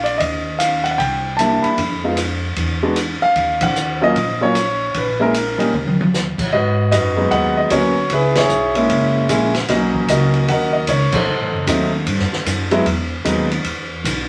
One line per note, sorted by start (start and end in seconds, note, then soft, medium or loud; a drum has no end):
0.00 0.16 A#1 medium
0.00 0.20 D5 medium
0.06 ride soft
0.18 0.95 D#2 medium
0.18 0.60 D#5 medium
0.18 kick soft
0.18 ride medium
0.59 0.83 F5 medium
0.59 hi-hat pedal medium
0.59 ride medium
0.84 0.90 F#5 medium
0.84 ride soft
0.91 0.98 F#5 medium
0.98 1.60 C2 medium
0.98 1.39 G5 medium
0.98 kick soft
0.98 ride medium
1.37 1.79 G3 medium
1.37 1.79 A#3 soft
1.37 1.79 D4 medium
1.37 1.79 E4 medium
1.37 1.64 A5 medium
1.37 hi-hat pedal soft
1.37 ride medium
1.62 2.00 B5 medium
1.62 muted upright bass stroke soft
1.62 ride soft
1.77 2.53 F2 medium
1.77 kick soft
1.77 ride medium
2.04 2.17 G#3 medium
2.04 2.17 B3 medium
2.04 2.17 D#4 medium
2.04 2.17 F4 medium
2.17 hi-hat pedal medium
2.17 ride medium
2.56 3.17 E2 medium
2.56 kick soft
2.56 ride medium
2.83 2.95 G#3 medium
2.83 2.96 B3 medium
2.83 2.96 D4 medium
2.83 2.96 F#4 medium
2.96 hi-hat pedal medium
2.96 ride medium
3.22 3.63 F5 loud
3.22 muted upright bass stroke soft
3.36 4.11 D#2 medium
3.36 kick soft
3.36 ride medium
3.61 3.99 F#5 medium
3.61 kick medium
3.61 ride medium
3.76 hi-hat pedal medium
4.01 4.14 F#3 medium
4.01 4.14 A#3 medium
4.01 4.14 C#4 medium
4.01 4.14 F4 medium
4.01 4.39 D#5 loud
4.15 4.90 A#1 medium
4.15 kick soft
4.15 ride medium
4.41 4.54 F#3 medium
4.41 4.54 A#3 medium
4.41 4.54 C#4 medium
4.41 4.54 F4 medium
4.41 4.97 C#5 medium
4.55 hi-hat pedal medium
4.55 ride medium
4.94 5.55 A#1 medium
4.94 5.22 B4 medium
4.94 kick soft
4.94 ride medium
5.20 5.33 G#3 medium
5.20 5.32 A#3 medium
5.20 5.33 C#4 medium
5.20 5.33 E4 medium
5.20 5.96 A#4 medium
5.34 hi-hat pedal medium
5.34 ride medium
5.58 5.72 A#2 medium
5.58 5.71 G3 medium
5.58 5.71 A#3 medium
5.58 5.71 C#4 medium
5.58 5.72 D#4 medium
5.58 ride soft
5.73 6.34 D#2 medium
5.73 mid tom soft
5.87 high tom medium
6.01 high tom medium
6.14 snare medium
6.14 hi-hat pedal medium
6.38 muted upright bass stroke soft
6.38 kick medium
6.38 crash medium
6.52 6.91 G#2 medium
6.52 6.91 F#4 medium
6.52 6.91 B4 medium
6.52 6.89 D#5 medium
6.52 kick soft
6.92 7.30 F#2 medium
6.92 7.67 F#4 medium
6.92 7.30 B4 medium
6.92 7.30 D#5 medium
6.92 kick soft
6.92 hi-hat pedal medium
6.92 ride medium
7.16 7.68 F#3 medium
7.16 7.68 G#3 medium
7.16 7.68 B3 medium
7.16 7.68 D#4 medium
7.31 7.70 D#2 medium
7.31 8.07 B4 medium
7.31 7.56 D#5 medium
7.31 7.57 F#5 loud
7.31 kick soft
7.31 ride medium
7.57 7.72 D#5 medium
7.70 8.09 D2 medium
7.70 7.94 F#3 medium
7.70 7.94 A#3 medium
7.70 7.94 B3 medium
7.70 7.94 C#4 medium
7.70 8.09 F#4 medium
7.70 8.12 C#5 medium
7.70 kick soft
7.70 hi-hat pedal medium
7.70 ride medium
8.10 8.48 C#2 medium
8.10 8.37 E4 medium
8.10 8.35 B4 medium
8.10 kick soft
8.10 ride medium
8.14 8.37 G#4 medium
8.35 8.75 E4 medium
8.35 9.52 G#4 medium
8.35 9.51 C#5 medium
8.35 snare medium
8.35 ride medium
8.49 8.88 B1 medium
8.49 hi-hat pedal medium
8.75 9.27 G#3 medium
8.75 9.27 A#3 medium
8.75 9.27 C#4 medium
8.75 9.27 E4 medium
8.75 ride soft
8.89 9.28 F#1 medium
8.89 kick soft
8.89 ride medium
9.29 9.67 A#1 medium
9.29 9.52 G#3 medium
9.29 9.52 A#3 medium
9.29 9.52 C#4 medium
9.29 9.53 E4 medium
9.29 kick soft
9.29 hi-hat pedal medium
9.29 ride medium
9.54 snare medium
9.54 ride soft
9.68 10.07 B1 medium
9.68 10.79 F#3 medium
9.68 10.79 A#3 medium
9.68 10.79 C#4 medium
9.68 10.80 D#4 medium
9.68 10.10 F#4 medium
9.68 10.10 A#4 medium
9.68 10.06 D#5 medium
9.68 kick soft
9.68 snare soft
9.68 ride medium
9.94 kick soft
10.08 10.47 C#2 medium
10.08 10.85 F#4 medium
10.08 10.50 A#4 medium
10.08 10.50 D#5 medium
10.08 kick soft
10.08 hi-hat pedal medium
10.08 ride medium
10.34 ride soft
10.48 10.87 D#2 medium
10.48 11.25 A#4 medium
10.48 10.71 D#5 medium
10.48 10.75 F#5 medium
10.48 kick soft
10.48 ride medium
10.73 10.88 D#5 medium
10.87 11.11 C#2 medium
10.87 11.14 C#5 medium
10.87 kick soft
10.87 hi-hat pedal medium
10.87 ride medium
11.12 11.67 D#4 medium
11.12 12.69 A4 medium
11.12 12.68 C5 medium
11.12 muted upright bass stroke soft
11.12 kick medium
11.12 crash medium
11.27 11.40 B1 medium
11.40 11.52 A1 medium
11.52 11.65 F#1 medium
11.67 12.05 D#2 medium
11.67 11.90 F#3 medium
11.67 11.90 A3 medium
11.67 11.90 C4 medium
11.67 11.90 D#4 medium
11.67 kick soft
11.67 hi-hat pedal medium
11.67 ride medium
12.06 12.21 G2 medium
12.06 kick soft
12.06 ride medium
12.19 12.32 F#2 medium
12.19 snare soft
12.32 12.45 D#2 medium
12.32 snare soft
12.46 12.84 F#2 medium
12.46 kick soft
12.46 hi-hat pedal medium
12.46 ride medium
12.71 12.84 F#3 medium
12.71 12.85 G#3 medium
12.71 12.85 B3 medium
12.71 12.85 E4 medium
12.71 ride soft
12.86 13.24 E2 medium
12.86 kick soft
12.86 ride medium
13.25 13.64 D#2 medium
13.25 13.48 F#3 medium
13.25 13.48 G#3 medium
13.25 13.48 B3 medium
13.25 13.48 D#4 medium
13.25 kick soft
13.25 hi-hat pedal medium
13.25 ride medium
13.51 ride soft
13.64 14.03 E2 medium
13.64 kick soft
13.64 ride medium
14.04 14.29 B1 medium
14.04 kick soft
14.04 hi-hat pedal medium
14.04 ride medium